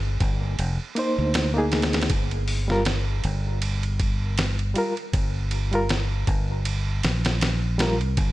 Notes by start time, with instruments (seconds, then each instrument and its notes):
Already playing: fingered electric bass G1
0.20 fingered electric bass G1, kick, ride
0.59 fingered electric bass F1, ride
0.95 reed electric piano A#3 D#4 C5, ride
1.18 fingered electric bass D2
1.34 snare, ride
1.54 reed electric piano A#3 D#4 G#4
1.72 snare, ride
1.82 snare, ride
1.93 snare, ride
2.01 snare, ride
2.10 fingered electric bass G1, kick, ride
2.31 ride
2.48 open hi-hat
2.68 reed electric piano G3 F4 A#4, snare
2.85 snare, ride
3.24 fingered electric bass G1, ride
3.62 ride
3.83 ride
4.00 kick, ride
4.38 snare, ride
4.59 ride
4.74 reed electric piano G3 F4, ride
4.78 reed electric piano A#4
4.97 ride
5.13 fingered electric bass G1, kick, ride
5.51 ride
5.72 reed electric piano G3 F4 A#4, ride
5.89 snare, ride
6.27 fingered electric bass G1, kick, ride
6.65 ride
7.03 fingered electric bass A#1, snare, ride
7.25 snare, ride
7.41 snare, ride
7.78 reed electric piano G3 F4 A#4, snare, ride
8.01 fingered electric bass C2, ride
8.17 fingered electric bass G1, kick, ride